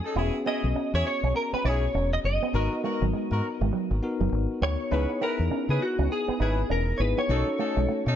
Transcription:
Already playing: tine electric piano C#4 D#4 F#4 A4, clean electric guitar G#4
0.04 horn section C#4 D#4 A4
0.16 fingered electric bass E1, tine electric piano B3 C#4 F#4 G#4, horn section C#4 E4 G#4, clean electric guitar E4
0.34 muted clean electric guitar stroke
0.46 clean electric guitar B3 D#5, horn section C#4 E4 G#4
0.64 fingered electric bass B1
0.75 clean electric guitar C#4, muted fingered electric bass stroke
0.93 fingered electric bass E2, horn section C#4 E4 G#4, clean electric guitar C#5
1.05 clean electric guitar C#5, muted clean electric guitar stroke
1.23 fingered electric bass B1, clean electric guitar C#4
1.35 clean electric guitar A#4, muted clean electric guitar stroke
1.53 clean electric guitar B3 B4, muted fingered electric bass stroke
1.65 fingered electric bass B1, horn section C#4 E4 G#4, clean electric guitar D#4 C#5
1.94 fingered electric bass E1, clean electric guitar C#4
2.13 clean electric guitar D#5
2.24 fingered electric bass F#1, clean electric guitar D#5, muted clean electric guitar stroke
2.42 clean electric guitar B3
2.53 fingered electric bass G#1, tine electric piano B3 D#4 F#4 A#4, horn section B3 F#4 A#4
2.72 muted clean electric guitar stroke
2.83 clean electric guitar G#3, horn section B3 F#4 A#4
3.02 fingered electric bass G#1, clean electric guitar F#3
3.13 clean electric guitar G#3, muted fingered electric bass stroke
3.31 fingered electric bass G#2, horn section B3 F#4 A#4, muted clean electric guitar stroke
3.61 fingered electric bass G#1, clean electric guitar G#3
3.73 clean electric guitar F#3
3.91 fingered electric bass G#1, muted clean electric guitar stroke
4.02 tine electric piano B3 D#4 F#4 A#4
4.21 fingered electric bass F#1, clean electric guitar F#3
4.32 fingered electric bass G#1
4.62 fingered electric bass D2, clean electric guitar B3 C#5
4.91 fingered electric bass C#2, tine electric piano B3 D#4 E4 G#4, horn section C#4 E4 B4, clean electric guitar C#4
5.09 muted clean electric guitar stroke
5.21 clean electric guitar B3 A#4, horn section C#4 E4 B4
5.39 fingered electric bass E2
5.51 clean electric guitar C#4, muted fingered electric bass stroke
5.69 fingered electric bass C#3, horn section C#4 E4 B4, clean electric guitar G#4
5.81 clean electric guitar F#4, muted clean electric guitar stroke
5.99 fingered electric bass C#2, clean electric guitar C#4
6.10 clean electric guitar G#4, muted clean electric guitar stroke
6.28 clean electric guitar B3, muted fingered electric bass stroke
6.40 fingered electric bass G#1, horn section C#4 E4 B4, clean electric guitar D#4 G#4
6.70 fingered electric bass E1, clean electric guitar C#4 A#4
6.98 fingered electric bass G#1, tine electric piano B3 D#4 E4 G#4, clean electric guitar B4 C#5, muted clean electric guitar stroke
7.17 clean electric guitar B3 C#5
7.29 fingered electric bass B1, tine electric piano C#4 D#4 F#4 A4, horn section C#4 D#4 A4
7.47 muted clean electric guitar stroke
7.59 clean electric guitar A3, horn section C#4 D#4 A4
7.77 fingered electric bass B1, clean electric guitar G#3
7.88 clean electric guitar A3, muted fingered electric bass stroke
8.06 fingered electric bass B2, horn section C#4 D#4 A4, muted clean electric guitar stroke

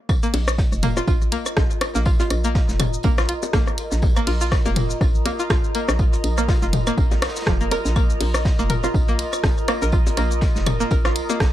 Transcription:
0.09 ambient pad F4, synth texture D#5, kick, cross-stick, tambourine, claves
0.23 synth pluck A#3, shaker
0.34 fm bass A#1, closed hi-hat, open hi-hat, low bongo
0.42 ambient pad D#5
0.48 ambient pad A#4, cross-stick, shaker
0.58 kick, snare, tambourine
0.72 fm bass F1, shaker
0.83 synth pluck A#3, closed hi-hat, mid tom, tambourine
0.97 synth pluck F4, cross-stick, low bongo, shaker
1.07 fm bass A#1, synth pluck F4, kick, tambourine
1.13 ambient pad A#5
1.21 shaker
1.32 synth pluck A#3, closed hi-hat, tambourine
1.46 cross-stick, claves, shaker
1.56 fm bass A#1, kick, cross-stick, snare, tambourine, low bongo
1.70 shaker
1.81 cross-stick, closed hi-hat, tambourine
1.95 fm bass A#1, synth pluck A#3, snare, shaker
2.05 synth pluck F4, kick, tambourine
2.20 synth pluck F4, closed hi-hat, low bongo, shaker
2.30 fm bass A#1, cross-stick, closed hi-hat, tambourine
2.44 synth pluck A#3, shaker
2.55 kick, snare, tambourine
2.69 fm bass F1, snare, shaker
2.80 cross-stick, closed hi-hat, mid tom, tambourine, low bongo, claves
2.93 shaker
3.03 fm bass A#1, synth pluck A#3, kick, tambourine
3.18 synth pluck F4, cross-stick, snare, shaker
3.28 synth pluck F4, closed hi-hat, tambourine
3.43 closed hi-hat, low bongo, shaker
3.53 fm bass A#1, synth pluck A#3, kick, cross-stick, snare, tambourine
3.67 cross-stick, shaker
3.78 closed hi-hat, tambourine
3.92 fm bass A#1, snare, shaker
4.02 kick, tambourine, low bongo
4.16 synth pluck A#3, cross-stick, claves, shaker
4.27 fm bass A#1, synth pluck F4, closed hi-hat, open hi-hat
4.41 synth pluck F4, shaker
4.51 kick, cross-stick, snare, tambourine
4.65 fm bass F1, synth pluck A#3, low bongo, shaker
4.76 closed hi-hat, mid tom, tambourine
4.90 shaker
5.01 fm bass A#1, kick, cross-stick, tambourine
5.15 shaker
5.25 synth pluck A#3, closed hi-hat, tambourine, low bongo
5.39 synth pluck F4, shaker
5.50 fm bass A#1, synth pluck F4, kick, cross-stick, snare, tambourine, claves
5.64 shaker
5.75 synth pluck A#3, closed hi-hat, tambourine
5.88 fm bass A#1, cross-stick, snare, low bongo, shaker
5.99 kick, tambourine
6.13 closed hi-hat, shaker
6.24 fm bass A#1, closed hi-hat, tambourine
6.38 synth pluck A#3, cross-stick, shaker
6.48 synth pluck F4, kick, snare, tambourine, low bongo
6.62 fm bass F1, synth pluck F4, snare, shaker
6.73 closed hi-hat, mid tom, tambourine
6.87 synth pluck A#3, cross-stick, claves, shaker
6.97 fm bass A#1, kick, tambourine
7.11 snare, low bongo, shaker
7.22 cross-stick, snare, closed hi-hat, tambourine
7.29 snare, tambourine
7.36 snare, tambourine, shaker
7.41 snare, tambourine
7.46 fm bass F1, synth pluck F3, kick, cross-stick, snare, tambourine
7.61 synth pluck A#3, shaker
7.71 synth pluck A#4, cross-stick, closed hi-hat, tambourine, low bongo
7.85 fm bass A#1, snare, shaker
7.96 synth pluck A#3, kick, cross-stick, tambourine, claves
8.10 shaker
8.20 fm bass A#1, closed hi-hat, open hi-hat, low bongo
8.34 cross-stick, shaker
8.45 kick, snare, tambourine
8.59 fm bass F1, synth pluck A#3, shaker
8.70 synth pluck A#4, closed hi-hat, mid tom, tambourine
8.84 synth pluck F4, cross-stick, low bongo, shaker
8.94 fm bass A#1, kick, tambourine
9.08 synth pluck A#3, shaker
9.19 closed hi-hat, tambourine
9.33 cross-stick, claves, shaker
9.44 fm bass A#1, kick, cross-stick, snare, tambourine, low bongo
9.57 shaker
9.68 synth pluck A#3, cross-stick, closed hi-hat, tambourine
9.82 fm bass A#1, synth pluck A#4, snare, shaker
9.92 synth pluck F4, kick, tambourine
10.07 closed hi-hat, low bongo, shaker
10.17 fm bass A#1, synth pluck A#3, cross-stick, closed hi-hat, tambourine
10.31 shaker
10.41 kick, snare, tambourine
10.56 fm bass F1, snare, shaker
10.66 cross-stick, closed hi-hat, mid tom, tambourine, low bongo, claves
10.80 synth pluck A#3, shaker
10.91 fm bass A#1, synth pluck A#4, kick, tambourine
11.05 synth pluck F4, cross-stick, snare, shaker
11.16 closed hi-hat, tambourine
11.30 synth pluck A#3, closed hi-hat, low bongo, shaker
11.40 fm bass A#1, kick, cross-stick, snare, tambourine

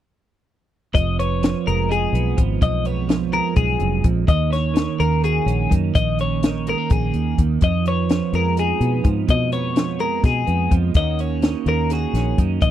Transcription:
0.94 fingered electric bass F1, clean electric guitar F2 D#5, kick, closed hi-hat
1.19 clean electric guitar B3 C#5, closed hi-hat
1.42 clean electric guitar F3, snare, closed hi-hat
1.67 fingered electric bass F1, clean electric guitar G#3 A#4, closed hi-hat
1.89 clean electric guitar D#4 G#4, closed hi-hat
2.13 fingered electric bass B1, clean electric guitar B3, closed hi-hat
2.37 fingered electric bass G#1, clean electric guitar F3, kick, closed hi-hat
2.61 fingered electric bass B1, clean electric guitar F2 D#5, kick, closed hi-hat
2.85 clean electric guitar B3 C#5, closed hi-hat
3.09 clean electric guitar F3, snare, closed hi-hat
3.33 clean electric guitar G#3 A#4, closed hi-hat
3.56 fingered electric bass B1, clean electric guitar G#2 G#4, kick, closed hi-hat
3.79 fingered electric bass F1, clean electric guitar F#2, closed hi-hat
4.04 fingered electric bass A#1, clean electric guitar F2, kick, closed hi-hat
4.27 clean electric guitar D#2 D#5, fingered electric bass D#2, kick, closed hi-hat
4.50 clean electric guitar C#4 C#5, snare, closed hi-hat
4.74 clean electric guitar D#3, snare, closed hi-hat
4.99 fingered electric bass D#2, clean electric guitar A#3 A#4, closed hi-hat
5.24 clean electric guitar F#4 G#4, closed hi-hat
5.46 fingered electric bass A#1, clean electric guitar C#4, closed hi-hat
5.70 fingered electric bass F#2, clean electric guitar D#3, kick, closed hi-hat
5.95 fingered electric bass A#1, clean electric guitar D#5, kick, closed hi-hat
6.19 clean electric guitar C#4 C#5, closed hi-hat
6.43 clean electric guitar D#3, snare, closed hi-hat
6.67 clean electric guitar G#3 A#4, closed hi-hat
6.78 clean electric guitar A#3
6.90 fingered electric bass A#1, clean electric guitar G#4, kick, closed hi-hat
7.14 fingered electric bass D#2, closed hi-hat
7.38 fingered electric bass D#2, clean electric guitar D#2, kick, closed hi-hat
7.61 fingered electric bass F2, clean electric guitar F2 D#5, kick, closed hi-hat
7.86 clean electric guitar B3 C#5, closed hi-hat
8.09 clean electric guitar F3, snare, closed hi-hat
8.33 fingered electric bass F2, clean electric guitar G#3 A#4, closed hi-hat
8.57 clean electric guitar D#4 G#4, closed hi-hat
8.80 fingered electric bass B2, clean electric guitar B3, closed hi-hat
9.04 fingered electric bass G#2, clean electric guitar F3, kick, closed hi-hat
9.27 clean electric guitar F2 D#5, fingered electric bass B2, kick, closed hi-hat
9.52 clean electric guitar B3 C#5, closed hi-hat
9.76 clean electric guitar F3, snare, closed hi-hat
9.99 clean electric guitar G#3 A#4, closed hi-hat
10.24 fingered electric bass B2, clean electric guitar D#4 G#4, kick, snare, closed hi-hat
10.46 fingered electric bass F2, clean electric guitar B3, closed hi-hat
10.71 fingered electric bass F2, clean electric guitar F3, kick, closed hi-hat
10.94 fingered electric bass D#2, clean electric guitar D#2 D#3 A#3 C#4 D#5, kick, closed hi-hat
10.99 clean electric guitar F#4
11.19 clean electric guitar C#4 C#5, closed hi-hat
11.42 clean electric guitar D#3, snare, closed hi-hat
11.66 fingered electric bass D#2, clean electric guitar A#3 A#4, closed hi-hat
11.90 clean electric guitar F#4 G#4, snare, closed hi-hat
12.13 fingered electric bass A#1, clean electric guitar C#4, snare, closed hi-hat
12.38 fingered electric bass F#2, clean electric guitar D#3, kick, closed hi-hat
12.61 fingered electric bass A#1, clean electric guitar D#2 D#5, kick, closed hi-hat

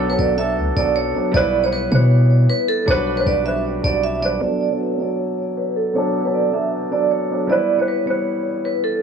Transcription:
Already playing: 808-style bass B1, grand piano F#3 B3 D4 F#4 A4
0.07 grand piano F#3 B3 D4, vibraphone B4
0.12 grand piano A4
0.19 808-style bass B1, vibraphone D5
0.36 grand piano F#3 B3 D4, vibraphone E5
0.40 grand piano A4
0.57 808-style bass D2
0.68 808-style bass B1
0.74 808-style bass B1, grand piano F#3 B3 D4, vibraphone D5
0.79 grand piano A4
0.96 vibraphone C#5
1.13 grand piano F#3 B3 D4
1.18 grand piano A4
1.32 808-style bass B1, grand piano G3 B3 E4, vibraphone D5
1.36 grand piano B4
1.61 grand piano G3 B3 E4, vibraphone C#5
1.66 grand piano B4
1.73 vibraphone B4
1.90 808-style bass B2, grand piano G3 B3 E4, vibraphone C#5
1.95 grand piano B4
2.50 vibraphone B4
2.68 vibraphone A4
2.86 808-style bass B1, grand piano G3 D4 F#4, vibraphone C#5
2.90 grand piano B4
3.15 grand piano G3 D4 F#4, vibraphone B4
3.20 grand piano B4
3.27 808-style bass B1, vibraphone D5
3.43 grand piano G3 D4 F#4, vibraphone E5
3.48 grand piano B4
3.82 808-style bass B1, grand piano G3 D4 F#4, vibraphone D5
3.87 grand piano D5
4.03 vibraphone E5
4.20 grand piano G3 D4 F#4, vibraphone D5
4.25 grand piano B4
4.39 grand piano F#3 B3 D4, vibraphone D5
4.44 grand piano A4
4.69 grand piano F#3 B3 D4
4.74 grand piano F#4
4.80 vibraphone B4
4.97 grand piano F#3 B3 D4, vibraphone C#5
5.01 grand piano A4
5.57 vibraphone B4
5.76 vibraphone A4
5.93 grand piano F#3 B3 D4, vibraphone C#5
5.98 grand piano A4
6.22 grand piano F#3 B3 D4, vibraphone B4
6.27 grand piano A4
6.34 vibraphone D5
6.51 grand piano F#3 B3 D4, vibraphone E5
6.56 grand piano A4
6.90 grand piano F#3 B3 D4, vibraphone D5
6.94 grand piano A4
7.11 vibraphone C#5
7.29 grand piano F#3 B3 D4
7.33 grand piano A4
7.47 grand piano G3 B3 E4, vibraphone D5
7.52 grand piano B4
7.77 grand piano G3 B3 E4, vibraphone C#5
7.81 grand piano B4
7.88 vibraphone B4
8.05 grand piano G3 B3 E4, vibraphone C#5
8.10 grand piano B4
8.65 vibraphone B4
8.84 vibraphone A4

